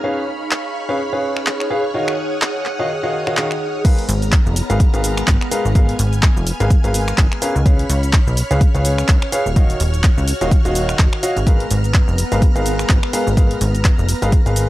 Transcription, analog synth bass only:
0, 0, Header, 1, 2, 480
1, 0, Start_track
1, 0, Tempo, 476190
1, 38, Time_signature, 4, 2, 24, 8
1, 14809, End_track
2, 0, Start_track
2, 0, Title_t, "Analog synth bass"
2, 0, Program_c, 0, 38
2, 4119, Note_on_c, 0, 32, 99
2, 4433, Note_off_c, 0, 32, 0
2, 4496, Note_on_c, 0, 29, 101
2, 4657, Note_off_c, 0, 29, 0
2, 4736, Note_on_c, 0, 32, 95
2, 4897, Note_off_c, 0, 32, 0
2, 4976, Note_on_c, 0, 32, 87
2, 5271, Note_off_c, 0, 32, 0
2, 5319, Note_on_c, 0, 32, 104
2, 5416, Note_off_c, 0, 32, 0
2, 5696, Note_on_c, 0, 32, 82
2, 5991, Note_off_c, 0, 32, 0
2, 6038, Note_on_c, 0, 32, 99
2, 6352, Note_off_c, 0, 32, 0
2, 6416, Note_on_c, 0, 29, 101
2, 6577, Note_off_c, 0, 29, 0
2, 6656, Note_on_c, 0, 32, 95
2, 6817, Note_off_c, 0, 32, 0
2, 6896, Note_on_c, 0, 32, 84
2, 7191, Note_off_c, 0, 32, 0
2, 7238, Note_on_c, 0, 32, 102
2, 7336, Note_off_c, 0, 32, 0
2, 7616, Note_on_c, 0, 37, 84
2, 7911, Note_off_c, 0, 37, 0
2, 7958, Note_on_c, 0, 37, 101
2, 8272, Note_off_c, 0, 37, 0
2, 8336, Note_on_c, 0, 35, 99
2, 8497, Note_off_c, 0, 35, 0
2, 8576, Note_on_c, 0, 37, 96
2, 8737, Note_off_c, 0, 37, 0
2, 8816, Note_on_c, 0, 37, 85
2, 9111, Note_off_c, 0, 37, 0
2, 9158, Note_on_c, 0, 37, 103
2, 9256, Note_off_c, 0, 37, 0
2, 9536, Note_on_c, 0, 27, 81
2, 9831, Note_off_c, 0, 27, 0
2, 9879, Note_on_c, 0, 27, 101
2, 10193, Note_off_c, 0, 27, 0
2, 10256, Note_on_c, 0, 37, 101
2, 10417, Note_off_c, 0, 37, 0
2, 10496, Note_on_c, 0, 27, 94
2, 10657, Note_off_c, 0, 27, 0
2, 10736, Note_on_c, 0, 27, 84
2, 11031, Note_off_c, 0, 27, 0
2, 11079, Note_on_c, 0, 27, 103
2, 11176, Note_off_c, 0, 27, 0
2, 11456, Note_on_c, 0, 32, 83
2, 11751, Note_off_c, 0, 32, 0
2, 11799, Note_on_c, 0, 32, 99
2, 12113, Note_off_c, 0, 32, 0
2, 12176, Note_on_c, 0, 29, 102
2, 12337, Note_off_c, 0, 29, 0
2, 12416, Note_on_c, 0, 32, 96
2, 12577, Note_off_c, 0, 32, 0
2, 12656, Note_on_c, 0, 32, 85
2, 12951, Note_off_c, 0, 32, 0
2, 12999, Note_on_c, 0, 32, 102
2, 13096, Note_off_c, 0, 32, 0
2, 13376, Note_on_c, 0, 32, 82
2, 13671, Note_off_c, 0, 32, 0
2, 13719, Note_on_c, 0, 32, 102
2, 14033, Note_off_c, 0, 32, 0
2, 14096, Note_on_c, 0, 29, 100
2, 14257, Note_off_c, 0, 29, 0
2, 14335, Note_on_c, 0, 32, 93
2, 14496, Note_off_c, 0, 32, 0
2, 14576, Note_on_c, 0, 32, 86
2, 14809, Note_off_c, 0, 32, 0
2, 14809, End_track
0, 0, End_of_file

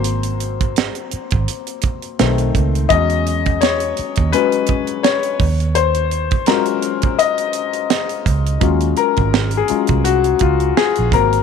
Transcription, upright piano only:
0, 0, Header, 1, 2, 480
1, 0, Start_track
1, 0, Tempo, 714286
1, 30, Time_signature, 4, 2, 24, 8
1, 7680, End_track
2, 0, Start_track
2, 0, Title_t, "Upright piano"
2, 0, Program_c, 0, 0
2, 0, Control_c, 0, 64, 127
2, 0, Note_on_c, 0, 54, 48
2, 0, Note_on_c, 0, 58, 47
2, 0, Note_on_c, 0, 60, 54
2, 122, Note_off_c, 0, 54, 0
2, 125, Note_off_c, 0, 58, 0
2, 126, Note_off_c, 0, 60, 0
2, 1473, Note_on_c, 0, 51, 53
2, 1474, Note_on_c, 0, 57, 47
2, 1477, Control_c, 0, 64, 0
2, 1481, Note_on_c, 0, 60, 55
2, 1578, Control_c, 0, 64, 127
2, 1927, Note_off_c, 0, 51, 0
2, 1928, Note_off_c, 0, 57, 0
2, 1931, Note_off_c, 0, 60, 0
2, 1941, Note_on_c, 0, 75, 101
2, 1949, Note_on_c, 0, 54, 54
2, 1953, Note_on_c, 0, 56, 51
2, 1957, Note_on_c, 0, 61, 60
2, 1960, Control_c, 0, 64, 0
2, 2087, Control_c, 0, 64, 127
2, 2280, Note_off_c, 0, 54, 0
2, 2282, Note_off_c, 0, 56, 0
2, 2285, Note_off_c, 0, 61, 0
2, 2425, Note_on_c, 0, 73, 89
2, 2440, Note_off_c, 0, 75, 0
2, 2906, Note_on_c, 0, 71, 97
2, 2909, Note_on_c, 0, 54, 49
2, 2916, Note_on_c, 0, 61, 58
2, 2918, Note_on_c, 0, 56, 49
2, 2921, Note_off_c, 0, 73, 0
2, 3125, Note_off_c, 0, 54, 0
2, 3129, Note_off_c, 0, 61, 0
2, 3130, Note_off_c, 0, 56, 0
2, 3361, Note_off_c, 0, 71, 0
2, 3383, Note_on_c, 0, 73, 86
2, 3637, Control_c, 0, 64, 0
2, 3735, Note_off_c, 0, 73, 0
2, 3747, Control_c, 0, 64, 127
2, 3864, Note_on_c, 0, 72, 89
2, 4320, Note_off_c, 0, 72, 0
2, 4346, Note_on_c, 0, 54, 52
2, 4347, Note_on_c, 0, 70, 81
2, 4350, Note_on_c, 0, 56, 49
2, 4352, Note_on_c, 0, 61, 48
2, 4355, Note_on_c, 0, 65, 57
2, 4802, Note_off_c, 0, 70, 0
2, 4829, Note_on_c, 0, 75, 91
2, 5041, Note_off_c, 0, 54, 0
2, 5043, Note_off_c, 0, 56, 0
2, 5044, Note_off_c, 0, 61, 0
2, 5046, Note_off_c, 0, 65, 0
2, 5522, Note_off_c, 0, 75, 0
2, 5780, Note_on_c, 0, 54, 50
2, 5783, Note_on_c, 0, 56, 47
2, 5788, Note_on_c, 0, 61, 47
2, 5790, Note_on_c, 0, 65, 54
2, 5797, Control_c, 0, 64, 0
2, 5916, Control_c, 0, 64, 127
2, 6030, Note_on_c, 0, 70, 83
2, 6433, Note_on_c, 0, 68, 76
2, 6442, Note_off_c, 0, 70, 0
2, 6478, Note_off_c, 0, 54, 0
2, 6479, Note_off_c, 0, 56, 0
2, 6482, Note_off_c, 0, 61, 0
2, 6483, Note_off_c, 0, 65, 0
2, 6514, Note_on_c, 0, 54, 43
2, 6516, Note_on_c, 0, 56, 39
2, 6516, Note_on_c, 0, 61, 39
2, 6517, Note_on_c, 0, 65, 49
2, 6728, Note_off_c, 0, 54, 0
2, 6729, Note_off_c, 0, 56, 0
2, 6729, Note_off_c, 0, 61, 0
2, 6730, Note_off_c, 0, 65, 0
2, 6750, Note_on_c, 0, 66, 88
2, 6761, Note_off_c, 0, 68, 0
2, 6997, Note_off_c, 0, 66, 0
2, 6998, Note_on_c, 0, 65, 75
2, 7238, Note_on_c, 0, 68, 92
2, 7241, Note_off_c, 0, 65, 0
2, 7474, Note_on_c, 0, 54, 51
2, 7478, Control_c, 0, 64, 0
2, 7481, Note_off_c, 0, 68, 0
2, 7481, Note_on_c, 0, 58, 43
2, 7483, Note_on_c, 0, 70, 90
2, 7485, Note_on_c, 0, 60, 53
2, 7608, Control_c, 0, 64, 127
2, 7680, Note_off_c, 0, 54, 0
2, 7680, Note_off_c, 0, 58, 0
2, 7680, Note_off_c, 0, 60, 0
2, 7680, Note_off_c, 0, 70, 0
2, 7680, End_track
0, 0, End_of_file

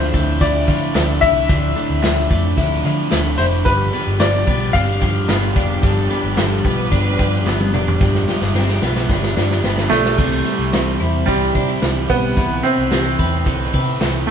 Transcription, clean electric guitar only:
0, 0, Header, 1, 2, 480
1, 0, Start_track
1, 0, Tempo, 543971
1, 1318, Time_signature, 4, 2, 24, 8
1, 12624, End_track
2, 0, Start_track
2, 0, Title_t, "Clean electric guitar"
2, 0, Program_c, 0, 27
2, 0, Note_on_c, 0, 50, 89
2, 0, Note_on_c, 0, 53, 60
2, 0, Note_on_c, 0, 57, 59
2, 112, Note_off_c, 0, 57, 0
2, 122, Note_on_c, 0, 57, 64
2, 360, Note_on_c, 0, 64, 70
2, 597, Note_off_c, 0, 53, 0
2, 600, Note_on_c, 0, 53, 57
2, 830, Note_off_c, 0, 57, 0
2, 841, Note_on_c, 0, 57, 60
2, 1068, Note_off_c, 0, 64, 0
2, 1078, Note_on_c, 0, 64, 65
2, 1314, Note_off_c, 0, 50, 0
2, 1318, Note_on_c, 0, 50, 92
2, 1546, Note_off_c, 0, 57, 0
2, 1556, Note_on_c, 0, 57, 60
2, 1791, Note_off_c, 0, 53, 0
2, 1795, Note_on_c, 0, 53, 61
2, 2024, Note_off_c, 0, 57, 0
2, 2035, Note_on_c, 0, 57, 62
2, 2265, Note_off_c, 0, 64, 0
2, 2276, Note_on_c, 0, 64, 73
2, 2511, Note_off_c, 0, 53, 0
2, 2514, Note_on_c, 0, 53, 64
2, 2742, Note_off_c, 0, 57, 0
2, 2753, Note_on_c, 0, 57, 66
2, 2981, Note_off_c, 0, 64, 0
2, 2992, Note_on_c, 0, 64, 65
2, 3229, Note_on_c, 0, 43, 82
2, 3279, Note_off_c, 0, 57, 0
2, 3279, Note_off_c, 0, 64, 0
2, 3471, Note_on_c, 0, 59, 64
2, 3497, Note_off_c, 0, 53, 0
2, 3710, Note_on_c, 0, 53, 64
2, 3945, Note_off_c, 0, 59, 0
2, 3948, Note_on_c, 0, 59, 60
2, 4189, Note_on_c, 0, 60, 71
2, 4215, Note_off_c, 0, 50, 0
2, 4309, Note_off_c, 0, 60, 0
2, 4309, Note_on_c, 0, 62, 63
2, 4425, Note_off_c, 0, 53, 0
2, 4428, Note_on_c, 0, 53, 61
2, 4667, Note_off_c, 0, 59, 0
2, 4670, Note_on_c, 0, 59, 59
2, 4896, Note_off_c, 0, 62, 0
2, 4907, Note_on_c, 0, 62, 65
2, 5136, Note_off_c, 0, 43, 0
2, 5147, Note_on_c, 0, 43, 86
2, 5381, Note_off_c, 0, 59, 0
2, 5385, Note_on_c, 0, 59, 61
2, 5622, Note_off_c, 0, 53, 0
2, 5626, Note_on_c, 0, 53, 65
2, 5865, Note_off_c, 0, 59, 0
2, 5868, Note_on_c, 0, 59, 57
2, 6100, Note_off_c, 0, 62, 0
2, 6103, Note_on_c, 0, 62, 70
2, 6343, Note_off_c, 0, 53, 0
2, 6346, Note_on_c, 0, 53, 63
2, 6582, Note_off_c, 0, 59, 0
2, 6586, Note_on_c, 0, 59, 59
2, 6823, Note_off_c, 0, 62, 0
2, 6827, Note_on_c, 0, 62, 61
2, 7054, Note_off_c, 0, 43, 0
2, 7065, Note_on_c, 0, 43, 75
2, 7302, Note_off_c, 0, 53, 0
2, 7305, Note_on_c, 0, 53, 59
2, 7332, Note_off_c, 0, 59, 0
2, 7544, Note_off_c, 0, 62, 0
2, 7548, Note_on_c, 0, 60, 67
2, 7669, Note_off_c, 0, 60, 0
2, 7669, Note_on_c, 0, 62, 56
2, 7789, Note_on_c, 0, 59, 55
2, 8026, Note_on_c, 0, 50, 67
2, 8254, Note_off_c, 0, 62, 0
2, 8264, Note_on_c, 0, 62, 60
2, 8496, Note_off_c, 0, 59, 0
2, 8506, Note_on_c, 0, 59, 60
2, 8733, Note_off_c, 0, 62, 0
2, 8744, Note_on_c, 0, 62, 62
2, 8980, Note_off_c, 0, 50, 0
2, 8984, Note_on_c, 0, 48, 82
2, 8990, Note_off_c, 0, 43, 0
2, 9035, Note_off_c, 0, 62, 0
2, 9037, Note_off_c, 0, 59, 0
2, 9038, Note_off_c, 0, 53, 0
2, 9224, Note_on_c, 0, 55, 52
2, 9466, Note_on_c, 0, 60, 59
2, 9704, Note_on_c, 0, 64, 62
2, 9945, Note_off_c, 0, 60, 0
2, 9948, Note_on_c, 0, 60, 61
2, 10189, Note_off_c, 0, 64, 0
2, 10193, Note_on_c, 0, 62, 61
2, 10312, Note_off_c, 0, 62, 0
2, 10312, Note_on_c, 0, 64, 54
2, 10665, Note_off_c, 0, 55, 0
2, 10676, Note_on_c, 0, 55, 54
2, 10906, Note_off_c, 0, 48, 0
2, 10917, Note_on_c, 0, 48, 81
2, 10964, Note_off_c, 0, 64, 0
2, 10965, Note_off_c, 0, 55, 0
2, 11156, Note_off_c, 0, 60, 0
2, 11159, Note_on_c, 0, 64, 53
2, 11398, Note_on_c, 0, 67, 58
2, 11519, Note_off_c, 0, 67, 0
2, 11519, Note_on_c, 0, 69, 49
2, 11639, Note_on_c, 0, 71, 60
2, 11873, Note_off_c, 0, 69, 0
2, 11884, Note_on_c, 0, 69, 61
2, 12120, Note_off_c, 0, 71, 0
2, 12123, Note_on_c, 0, 71, 65
2, 12353, Note_off_c, 0, 69, 0
2, 12364, Note_on_c, 0, 69, 57
2, 12600, Note_off_c, 0, 64, 0
2, 12624, Note_off_c, 0, 48, 0
2, 12624, Note_off_c, 0, 69, 0
2, 12624, Note_off_c, 0, 71, 0
2, 12624, End_track
0, 0, End_of_file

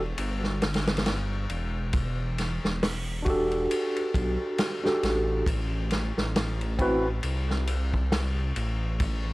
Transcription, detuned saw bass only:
0, 0, Header, 1, 2, 480
1, 0, Start_track
1, 0, Tempo, 882353
1, 1056, Time_signature, 4, 2, 24, 8
1, 5076, End_track
2, 0, Start_track
2, 0, Title_t, "Detuned saw bass"
2, 0, Program_c, 0, 39
2, 0, Note_on_c, 0, 28, 85
2, 77, Note_off_c, 0, 28, 0
2, 97, Note_on_c, 0, 31, 89
2, 797, Note_off_c, 0, 31, 0
2, 816, Note_on_c, 0, 28, 96
2, 1409, Note_off_c, 0, 28, 0
2, 1436, Note_on_c, 0, 28, 85
2, 1997, Note_off_c, 0, 28, 0
2, 2256, Note_on_c, 0, 35, 90
2, 2379, Note_off_c, 0, 35, 0
2, 2737, Note_on_c, 0, 33, 97
2, 2953, Note_off_c, 0, 33, 0
2, 2974, Note_on_c, 0, 33, 89
2, 3328, Note_off_c, 0, 33, 0
2, 3358, Note_on_c, 0, 33, 84
2, 3918, Note_off_c, 0, 33, 0
2, 3936, Note_on_c, 0, 36, 84
2, 4637, Note_off_c, 0, 36, 0
2, 4659, Note_on_c, 0, 33, 99
2, 5076, Note_off_c, 0, 33, 0
2, 5076, End_track
0, 0, End_of_file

